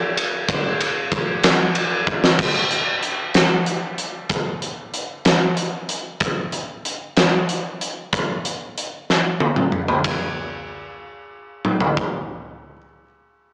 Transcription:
0.17 ride medium
0.48 kick loud
0.48 ride loud
0.80 ride medium
1.12 kick medium
1.12 ride medium
1.44 snare loud
1.44 ride loud
1.75 ride medium
2.07 kick medium
2.24 snare medium
2.39 kick loud
2.39 crash medium
2.71 closed hi-hat medium
3.03 closed hi-hat medium
3.34 snare loud
3.34 closed hi-hat medium
3.66 closed hi-hat medium
3.98 closed hi-hat medium
4.30 kick loud
4.30 closed hi-hat medium
4.62 closed hi-hat medium
4.94 closed hi-hat medium
5.25 snare loud
5.25 closed hi-hat medium
5.57 closed hi-hat medium
5.89 closed hi-hat medium
6.20 kick loud
6.20 closed hi-hat medium
6.52 closed hi-hat medium
6.85 closed hi-hat medium
7.17 snare medium
7.17 closed hi-hat medium
7.49 closed hi-hat medium
7.81 closed hi-hat medium
8.13 kick medium
8.13 closed hi-hat medium
8.45 closed hi-hat medium
8.78 closed hi-hat medium
9.10 snare soft
9.40 high tom medium
9.56 mid tom medium
9.72 mid tom medium
9.88 floor tom medium
10.04 kick medium
10.04 ride medium
11.65 mid tom soft
11.80 floor tom medium
11.97 kick medium

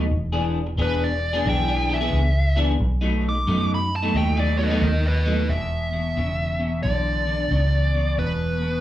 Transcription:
0.11 0.76 E1 loud
0.32 0.59 E3 medium
0.32 0.58 B3 medium
0.32 0.58 D4 medium
0.32 0.58 G#4 medium
0.67 muted clean electric guitar stroke medium
0.78 1.43 E1 medium
0.78 1.06 E3 medium
0.78 1.07 B3 medium
0.78 1.07 D4 medium
0.78 1.07 G#4 loud
0.82 1.02 B4 medium
1.04 1.46 D5 medium
1.33 1.44 E3 medium
1.33 1.45 B3 medium
1.33 1.45 D4 loud
1.33 1.46 G#4 loud
1.46 2.11 B1 medium
1.46 1.67 E3 medium
1.46 1.67 B3 medium
1.46 1.67 D4 medium
1.46 1.67 G#4 medium
1.46 1.91 G5 loud
1.68 1.88 E3 medium
1.68 1.88 B3 medium
1.68 1.89 D4 medium
1.68 1.89 G#4 medium
1.89 2.00 E3 medium
1.89 2.00 B3 medium
1.89 2.00 D4 medium
1.89 1.99 G#4 medium
1.94 2.58 E5 medium
2.01 2.20 E3 medium
2.01 2.20 B3 medium
2.01 2.20 D4 medium
2.01 2.19 G#4 loud
2.13 2.78 C#2 medium
2.56 2.72 E3 medium
2.56 2.72 B3 medium
2.56 2.72 D4 medium
2.56 2.72 G#4 medium
2.80 3.45 B1 loud
3.01 3.27 B2 medium
3.01 3.27 F#3 medium
3.01 3.27 A3 medium
3.01 3.27 D#4 medium
3.29 3.71 D6 loud
3.35 muted clean electric guitar stroke soft
3.47 4.13 F#2 medium
3.47 3.76 B2 medium
3.47 3.76 F#3 medium
3.47 3.76 A3 medium
3.47 3.76 D#4 medium
3.74 3.94 B5 medium
3.96 4.16 A5 medium
4.03 4.14 B2 medium
4.03 4.14 F#3 medium
4.03 4.14 A3 medium
4.03 4.15 D#4 loud
4.14 4.80 D#2 medium
4.14 4.37 B2 medium
4.14 4.36 F#3 medium
4.14 4.36 A3 medium
4.14 4.35 D#4 medium
4.14 4.38 G5 medium
4.37 4.57 B2 medium
4.37 4.57 F#3 medium
4.37 4.58 A3 medium
4.37 4.58 D#4 medium
4.37 4.58 D5 medium
4.58 4.70 B2 medium
4.58 4.70 F#3 medium
4.58 4.69 A3 medium
4.58 4.69 D#4 medium
4.58 5.49 D#5 medium
4.63 4.83 B4 medium
4.70 4.89 B2 medium
4.70 4.89 F#3 medium
4.70 4.89 A3 medium
4.70 4.89 D#4 loud
4.82 5.47 D#2 medium
4.82 5.05 A#4 loud
5.08 5.50 B4 loud
5.25 5.41 B2 medium
5.25 5.41 F#3 medium
5.25 5.41 A3 loud
5.25 5.42 D#4 loud
5.49 6.14 E1 medium
5.49 5.89 E2 medium
5.49 5.89 B2 medium
5.49 6.82 E5 loud
5.93 6.14 E2 medium
5.93 6.15 B2 medium
6.17 6.82 E1 medium
6.17 6.56 E2 medium
6.17 6.56 C#3 medium
6.59 6.81 E2 medium
6.59 6.82 B2 medium
6.83 7.49 B1 medium
6.83 7.23 E2 medium
6.83 7.23 D3 medium
6.83 8.22 D5 medium
7.27 7.49 E2 medium
7.27 7.49 D3 medium
7.51 8.16 C#2 medium
7.51 7.90 E2 medium
7.51 7.90 C#3 medium
7.94 8.16 E2 medium
7.94 8.16 B2 medium
8.18 8.81 E1 medium
8.18 8.57 E2 medium
8.18 8.58 B2 medium
8.18 8.81 B4 medium
8.61 8.81 E2 medium
8.61 8.81 B2 medium

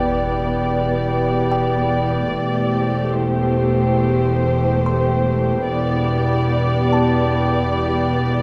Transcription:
0.00 2.33 E1 soft
0.00 2.33 E2 soft
0.00 2.33 B3 soft
0.00 2.33 G4 soft
0.00 2.33 B4 soft
0.00 2.33 D5 soft
0.00 3.16 D5 soft
0.00 1.50 G5 soft
0.00 2.33 G5 soft
0.00 sub drop soft
1.51 3.99 G5 soft
2.37 5.65 E1 soft
2.37 5.65 E2 soft
2.37 5.69 A3 soft
2.37 5.65 G4 soft
2.37 5.69 A4 soft
2.37 5.69 C5 soft
2.37 5.66 G5 soft
3.22 5.70 C5 soft
4.86 7.30 C6 soft
5.69 8.42 E1 soft
5.69 8.42 E2 soft
5.69 8.42 B3 soft
5.69 8.42 G4 soft
5.69 8.42 D5 soft
5.69 8.42 G5 soft
6.93 8.42 A5 soft

